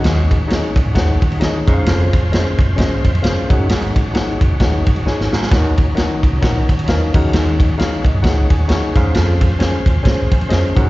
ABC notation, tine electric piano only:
X:1
M:4/4
L:1/8
Q:"Swing" 1/4=132
K:Abmix
V:1 name="Tine electric piano"
[EAdg] z [EAde] z [EAdg] z [EAde] [DAcef]- | [DAcef] z [DAce] z [DAce] z [DAcf] [EAdg]- | [EAdg] z [EAdg] z [EAdg] z [EAda] z | [EBdg] z [EBdg] z [EBdg] z [EBdf] [EAdg]- |
[EAdg] z [EAdf] z [EAd] z [EAdg] [DAcf]- | [DAcf] z [DAca] z [DAca] z [DAce] [EAdg] |]
V:2 name="Tine electric piano" clef=bass
E,2 z6 | z6 z A,,- | A,,2 z6 | E,3 z4 E,- |
E,2 z e g a d'2 | z6 z A,, |]